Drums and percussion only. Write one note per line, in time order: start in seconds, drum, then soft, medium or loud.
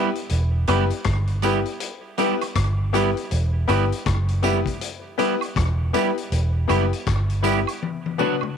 0.15 closed hi-hat soft
0.29 closed hi-hat medium
0.67 closed hi-hat medium
0.67 tambourine soft
0.67 high woodblock medium
0.90 closed hi-hat medium
1.04 kick loud
1.04 cross-stick loud
1.04 closed hi-hat medium
1.27 closed hi-hat soft
1.42 closed hi-hat medium
1.42 tambourine medium
1.65 closed hi-hat soft
1.80 closed hi-hat loud
2.18 closed hi-hat medium
2.18 tambourine soft
2.41 closed hi-hat medium
2.41 high woodblock medium
2.55 kick loud
2.55 cross-stick loud
2.55 closed hi-hat medium
2.94 cross-stick medium
2.94 closed hi-hat medium
2.94 tambourine medium
3.17 closed hi-hat soft
3.31 closed hi-hat medium
3.69 closed hi-hat medium
3.69 tambourine soft
3.69 high woodblock medium
3.92 closed hi-hat medium
4.06 kick loud
4.06 cross-stick loud
4.06 closed hi-hat medium
4.28 closed hi-hat soft
4.43 closed hi-hat medium
4.43 tambourine medium
4.66 kick medium
4.66 closed hi-hat medium
4.81 closed hi-hat loud
5.19 closed hi-hat medium
5.19 tambourine soft
5.41 closed hi-hat soft
5.41 high woodblock medium
5.56 kick loud
5.56 cross-stick loud
5.56 closed hi-hat medium
5.94 closed hi-hat medium
5.94 tambourine medium
6.18 closed hi-hat soft
6.32 closed hi-hat medium
6.69 closed hi-hat medium
6.69 tambourine soft
6.69 high woodblock medium
6.93 closed hi-hat medium
7.07 kick loud
7.07 cross-stick loud
7.07 closed hi-hat medium
7.30 closed hi-hat medium
7.44 closed hi-hat medium
7.44 tambourine medium
7.67 closed hi-hat medium
7.67 high woodblock medium
7.82 high tom medium
8.06 high tom medium
8.19 mid tom medium
8.19 tambourine soft
8.41 mid tom medium
8.41 high woodblock medium